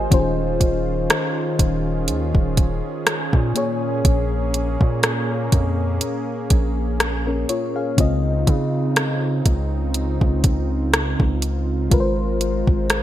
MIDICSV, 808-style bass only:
0, 0, Header, 1, 2, 480
1, 0, Start_track
1, 0, Tempo, 983607
1, 55, Time_signature, 4, 2, 24, 8
1, 6358, End_track
2, 0, Start_track
2, 0, Title_t, "808-style bass"
2, 0, Program_c, 0, 38
2, 57, Note_on_c, 0, 27, 109
2, 286, Note_off_c, 0, 27, 0
2, 295, Note_on_c, 0, 27, 105
2, 526, Note_off_c, 0, 27, 0
2, 777, Note_on_c, 0, 27, 100
2, 1015, Note_on_c, 0, 39, 93
2, 1023, Note_off_c, 0, 27, 0
2, 1138, Note_off_c, 0, 39, 0
2, 1145, Note_on_c, 0, 27, 99
2, 1375, Note_off_c, 0, 27, 0
2, 1625, Note_on_c, 0, 46, 105
2, 1961, Note_off_c, 0, 46, 0
2, 1975, Note_on_c, 0, 34, 109
2, 2330, Note_off_c, 0, 34, 0
2, 2346, Note_on_c, 0, 46, 93
2, 2682, Note_off_c, 0, 46, 0
2, 2696, Note_on_c, 0, 41, 106
2, 2926, Note_off_c, 0, 41, 0
2, 3175, Note_on_c, 0, 34, 104
2, 3636, Note_off_c, 0, 34, 0
2, 3894, Note_on_c, 0, 37, 108
2, 4125, Note_off_c, 0, 37, 0
2, 4134, Note_on_c, 0, 49, 104
2, 4595, Note_off_c, 0, 49, 0
2, 4614, Note_on_c, 0, 37, 94
2, 4969, Note_off_c, 0, 37, 0
2, 4984, Note_on_c, 0, 37, 98
2, 5445, Note_off_c, 0, 37, 0
2, 5464, Note_on_c, 0, 37, 103
2, 5801, Note_off_c, 0, 37, 0
2, 5814, Note_on_c, 0, 32, 111
2, 6169, Note_off_c, 0, 32, 0
2, 6184, Note_on_c, 0, 32, 94
2, 6358, Note_off_c, 0, 32, 0
2, 6358, End_track
0, 0, End_of_file